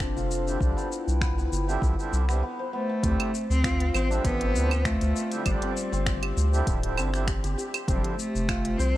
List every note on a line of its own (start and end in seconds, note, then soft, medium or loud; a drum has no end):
0.00 0.12 F1 loud
0.00 0.83 C4 medium
0.00 0.58 D4 medium
0.00 2.07 D4 medium
0.00 0.16 F4 medium
0.00 0.58 F4 medium
0.00 0.58 A4 medium
0.00 0.83 C5 medium
0.00 1.71 D5 medium
0.00 2.39 A5 medium
0.00 finger snap medium
0.00 kick medium
0.00 shaker soft
0.16 0.57 F1 medium
0.16 3.53 F4 medium
0.16 shaker soft
0.31 shaker medium
0.45 0.58 D3 medium
0.45 0.58 G3 medium
0.45 0.59 C4 medium
0.45 0.59 E4 medium
0.45 shaker soft
0.59 0.74 C2 medium
0.59 0.87 D3 medium
0.59 0.88 G3 medium
0.59 0.88 C4 medium
0.59 0.88 D4 medium
0.59 2.41 E4 medium
0.59 2.41 B4 medium
0.59 2.41 G5 medium
0.59 kick loud
0.59 shaker soft
0.77 1.21 B3 medium
0.77 shaker soft
0.92 shaker medium
1.08 1.48 C2 medium
1.08 shaker soft
1.21 1.37 B3 medium
1.21 finger snap medium
1.21 kick loud
1.21 shaker soft
1.38 1.68 B3 medium
1.38 shaker soft
1.52 1.77 G1 loud
1.52 shaker medium
1.67 1.94 D3 loud
1.67 1.94 G3 medium
1.67 2.28 B3 medium
1.67 1.94 C4 medium
1.67 1.95 E4 loud
1.67 shaker soft
1.82 1.95 C2 medium
1.82 kick loud
1.82 shaker soft
1.97 2.24 D3 medium
1.97 2.25 G3 medium
1.97 2.25 C4 medium
1.97 2.25 E4 loud
1.97 shaker soft
2.13 2.43 C2 loud
2.13 shaker medium
2.28 2.42 D3 medium
2.28 2.43 G3 medium
2.28 2.42 B3 medium
2.28 2.43 C4 medium
2.28 2.43 E4 medium
2.28 finger snap soft
2.28 shaker soft
2.43 2.65 B3 medium
2.59 2.79 C5 medium
2.73 3.46 A3 loud
2.73 2.89 B3 medium
2.89 3.10 B3 medium
3.03 3.17 D2 medium
3.03 3.30 D3 medium
3.03 3.30 G3 medium
3.03 4.40 C4 medium
3.03 3.31 C4 medium
3.03 3.31 E4 medium
3.03 kick loud
3.03 closed hi-hat medium
3.03 shaker soft
3.20 closed hi-hat soft
3.20 claves medium
3.35 shaker medium
3.50 3.90 D2 medium
3.50 3.91 C4 loud
3.50 shaker soft
3.64 4.85 F4 medium
3.64 finger snap medium
3.64 kick loud
3.64 closed hi-hat medium
3.64 shaker soft
3.80 closed hi-hat soft
3.94 4.20 A1 medium
3.94 4.08 C4 loud
3.94 4.24 C5 medium
3.94 claves medium
3.94 shaker medium
4.09 4.51 D3 medium
4.09 4.51 G3 medium
4.09 4.52 C4 medium
4.09 7.84 D4 medium
4.09 4.52 E5 loud
4.09 shaker soft
4.25 4.57 A1 loud
4.25 4.87 B3 loud
4.25 6.88 C5 medium
4.25 kick loud
4.25 closed hi-hat medium
4.25 shaker soft
4.41 4.71 C4 loud
4.41 closed hi-hat soft
4.54 4.97 D2 loud
4.54 4.72 D3 medium
4.54 4.72 G3 medium
4.54 4.73 C4 medium
4.54 4.73 E4 loud
4.54 shaker medium
4.71 5.62 C4 loud
4.71 claves medium
4.71 shaker soft
4.85 5.45 A3 loud
4.85 8.22 F4 medium
4.85 finger snap loud
4.85 kick loud
4.85 closed hi-hat medium
4.85 shaker soft
5.01 5.13 D2 medium
5.01 closed hi-hat soft
5.01 shaker soft
5.16 shaker medium
5.31 5.43 D3 medium
5.31 5.43 G3 medium
5.31 5.44 C4 medium
5.31 5.44 E4 medium
5.31 closed hi-hat soft
5.31 shaker soft
5.45 5.59 G1 medium
5.45 5.72 D3 loud
5.45 6.32 G3 medium
5.45 5.73 C4 medium
5.45 5.73 D4 loud
5.45 7.92 D5 loud
5.45 kick loud
5.45 closed hi-hat medium
5.45 claves medium
5.45 shaker soft
5.62 5.92 C4 loud
5.62 closed hi-hat soft
5.77 shaker medium
5.92 6.33 G1 medium
5.92 6.97 C4 loud
5.92 shaker soft
6.06 finger snap loud
6.06 kick loud
6.06 closed hi-hat medium
6.06 shaker soft
6.23 7.27 G4 medium
6.23 closed hi-hat soft
6.23 claves medium
6.37 6.62 D2 loud
6.37 shaker medium
6.52 6.79 D3 loud
6.52 6.79 G3 medium
6.52 6.79 C4 medium
6.52 6.80 E4 loud
6.52 shaker soft
6.67 6.99 D1 loud
6.67 kick loud
6.67 closed hi-hat medium
6.67 shaker soft
6.82 7.09 D3 medium
6.82 7.09 G3 medium
6.82 7.10 C4 medium
6.82 7.10 E4 medium
6.82 closed hi-hat soft
6.97 7.39 G1 loud
6.97 7.88 C4 loud
6.97 claves medium
6.97 shaker medium
7.13 7.29 D3 medium
7.13 7.29 G3 medium
7.13 7.30 C4 medium
7.13 7.30 E4 medium
7.13 finger snap soft
7.13 shaker soft
7.27 7.43 G4 medium
7.27 finger snap loud
7.27 kick loud
7.27 closed hi-hat medium
7.27 shaker soft
7.44 7.55 G1 medium
7.44 7.57 G4 medium
7.44 closed hi-hat soft
7.44 shaker soft
7.58 8.97 G4 medium
7.58 shaker medium
7.74 8.97 C6 medium
7.74 closed hi-hat soft
7.74 claves medium
7.74 shaker soft
7.87 8.02 F1 medium
7.87 8.15 D3 medium
7.87 7.98 F3 medium
7.87 8.15 G3 medium
7.87 8.97 C4 medium
7.87 8.15 C4 medium
7.87 8.16 E4 medium
7.87 kick loud
7.87 closed hi-hat medium
7.87 shaker medium
7.96 8.04 G3 medium
8.02 8.17 F3 medium
8.02 closed hi-hat soft
8.17 8.79 A3 medium
8.17 shaker medium
8.35 8.75 F1 medium
8.35 shaker soft
8.49 8.97 F4 medium
8.49 finger snap loud
8.49 kick loud
8.49 closed hi-hat medium
8.49 claves medium
8.49 shaker soft
8.65 closed hi-hat soft
8.78 8.97 C2 loud
8.78 8.97 C4 loud
8.78 8.97 C5 loud
8.78 shaker medium
8.94 8.97 D3 medium